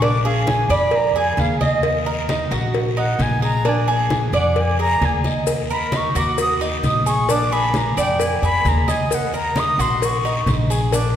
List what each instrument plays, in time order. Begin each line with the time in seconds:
Already playing: upright bass A#1
0.02 cuban tres D4, flute D6, cowbell, high conga, long guiro
0.24 cuban tres G#4, flute F5, high conga
0.47 flute G#5, cowbell, high conga, short guiro
0.69 upright bass F2, cuban tres D5, flute B5, cowbell, high conga, short guiro
0.91 cowbell, high conga, long guiro
0.95 flute A#5
1.16 cuban tres G#4, flute G#5, high conga
1.37 upright bass D#2, flute F5, cowbell, high conga, short guiro
1.60 flute D#5, cuban tres D#5, high conga, short guiro
1.83 cowbell, high conga, long guiro
2.06 cuban tres A#4, high conga
2.29 cuban tres D#4, cowbell, high conga, short guiro
2.51 upright bass A#1, cuban tres F#4, cowbell, high conga, short guiro
2.74 cowbell, high conga, long guiro
2.97 cuban tres D#4, flute F#5, high conga
3.19 upright bass A#1, flute G#5, cowbell, high conga, short guiro
3.42 cuban tres G#4, flute A#5, short guiro
3.65 cuban tres D4, cowbell, high conga, long guiro
3.69 flute G#5
3.88 cuban tres G#4, high conga
4.10 cowbell, high conga, short guiro
4.32 upright bass F2, cuban tres D5, flute F#5, cowbell, high conga, short guiro
4.56 flute G#5, cowbell, high conga, long guiro
4.79 cuban tres G#4, flute A#5, high conga
5.01 upright bass D#2, cowbell, high conga, short guiro
5.05 flute G#5
5.24 cuban tres D#5, high conga, short guiro
5.47 cowbell, high conga, long guiro, maracas
5.69 cuban tres A#4, flute B5, high conga, maracas
5.92 cuban tres D#4, cowbell, high conga, short guiro, maracas
5.97 flute C#6
6.15 upright bass D#2, cuban tres F#4, flute D6, cowbell, high conga, short guiro, maracas
6.38 flute D#6, cowbell, high conga, long guiro, maracas
6.61 cuban tres D#4, high conga, maracas
6.83 upright bass A#1, flute D#6, cowbell, high conga, short guiro, maracas
7.06 cuban tres G#4, flute C#6, short guiro, maracas
7.29 cuban tres D4, flute D6, cowbell, high conga, long guiro, maracas
7.51 cuban tres G#4, flute B5, high conga, maracas
7.74 flute A#5, cowbell, high conga, short guiro, maracas
7.97 upright bass F2, cuban tres D5, flute G5, cowbell, high conga, short guiro, maracas
8.19 flute G#5, cowbell, high conga, long guiro, maracas
8.42 upright bass F2, cuban tres G#4, flute B5, high conga, maracas
8.65 upright bass D#2, flute A#5, cowbell, high conga, short guiro, maracas
8.88 cuban tres D#5, flute G#5, high conga, short guiro, maracas
9.10 cowbell, high conga, long guiro, maracas
9.14 flute F#5
9.33 cuban tres A#4, flute A#5, high conga, maracas
9.56 cuban tres D#4, cowbell, high conga, short guiro, maracas
9.60 flute D#6
9.78 upright bass A#1, cuban tres F#4, flute C6, cowbell, high conga, short guiro, maracas
10.02 flute C#6, cowbell, high conga, long guiro, maracas
10.25 cuban tres D#4, high conga, maracas
10.46 upright bass A#1, cowbell, high conga, short guiro, maracas
10.70 cuban tres G#4, short guiro, maracas
10.92 cuban tres D4, cowbell, high conga, long guiro, maracas